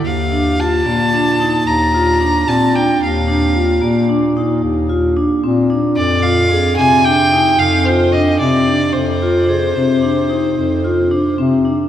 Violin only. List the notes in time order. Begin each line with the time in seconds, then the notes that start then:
0.05 F5
0.60 A5
1.67 A#5
2.48 A5
2.75 G5
3.03 F5
5.96 D5
6.22 F5
6.77 G#5
7.04 G5
7.59 F5
7.85 C5
8.12 D#5
8.39 D5
8.93 C5